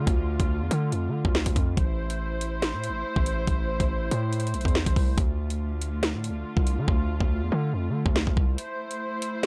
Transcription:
Already playing: string section D3 A3 F4
0.07 808-style bass D2, kick, closed hi-hat
0.40 808-style bass D2, kick, closed hi-hat
0.61 808-style bass E2
0.71 808-style bass D3, closed hi-hat
0.92 808-style bass F2, closed hi-hat
1.08 808-style bass D3
1.25 808-style bass D2, kick
1.35 snare
1.46 808-style bass D2, kick, closed hi-hat
1.56 808-style bass F2, kick, closed hi-hat
1.77 808-style bass A1, string section A3 E4 C5, kick, closed hi-hat
2.10 closed hi-hat
2.41 closed hi-hat
2.62 snare, closed hi-hat
2.74 808-style bass A2
2.84 closed hi-hat
2.89 808-style bass A1
3.16 808-style bass A1, kick
3.26 closed hi-hat
3.47 808-style bass A1, kick, closed hi-hat
3.80 808-style bass A1, kick, closed hi-hat
4.11 808-style bass A2, closed hi-hat
4.33 closed hi-hat
4.40 closed hi-hat
4.47 closed hi-hat
4.54 808-style bass B1, closed hi-hat
4.61 closed hi-hat
4.65 808-style bass E2, kick, closed hi-hat
4.75 snare
4.86 808-style bass A1, kick, closed hi-hat
4.96 808-style bass C2, kick, open hi-hat
5.18 808-style bass D2, string section D3 F4, kick, closed hi-hat
5.50 closed hi-hat
5.82 closed hi-hat
6.03 snare, closed hi-hat
6.14 808-style bass A2
6.24 closed hi-hat
6.30 808-style bass D2
6.57 808-style bass C2, kick
6.67 closed hi-hat
6.78 808-style bass D3
6.88 808-style bass D2, kick
7.20 808-style bass D2, kick
7.42 808-style bass E2
7.52 808-style bass D3
7.73 808-style bass F2
7.89 808-style bass D3
8.06 808-style bass D2, kick
8.16 snare
8.27 808-style bass D2, kick
8.37 808-style bass C2, kick
8.58 string section E4 C5, closed hi-hat
8.91 closed hi-hat
9.22 closed hi-hat

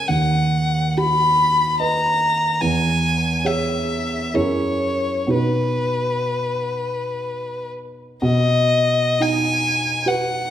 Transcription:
Already playing: grand piano C#4 A#4
0.08 grand piano D#2, violin F#5
0.97 grand piano F#4, violin B5
1.80 grand piano B4 D#5, violin A#5
2.61 grand piano E2, violin G#5
3.45 grand piano G#4 C#5, violin E5
4.34 grand piano F#2 E4 G#4 A#4, violin C#5
5.27 grand piano B2 D#4 F#4 B4
5.34 violin B4
8.22 grand piano B2, violin D#5
9.20 grand piano D#4, violin G#5
10.06 grand piano F#4 B4, violin F#5

